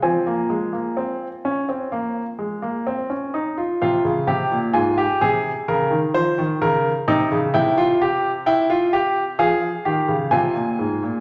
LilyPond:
<<
  \new Staff \with { instrumentName = "Grand piano" } { \time 4/4 \key f \minor \tempo 4 = 64 << { aes''2.~ aes''8 r8 | f''4 aes''2. | g''4 g''4 f''4 aes''4 | } \\ { c'16 bes16 aes16 bes16 c'8 des'16 c'16 bes8 aes16 bes16 c'16 des'16 ees'16 f'16 | f'8 g'8 f'16 g'16 aes'8 bes'8 c''8 bes'8 ees'8 | e'16 f'16 g'8 e'16 f'16 g'8 aes'8 g'8 f'4 | } >> }
  \new Staff \with { instrumentName = "Grand piano" } { \clef bass \time 4/4 \key f \minor f2.~ f8 r8 | c16 des16 c16 bes,16 aes,8 c8 des16 ees16 f16 ees16 des8 c16 des16 | c2 f8 ees16 des16 c16 bes,16 aes,16 bes,16 | }
>>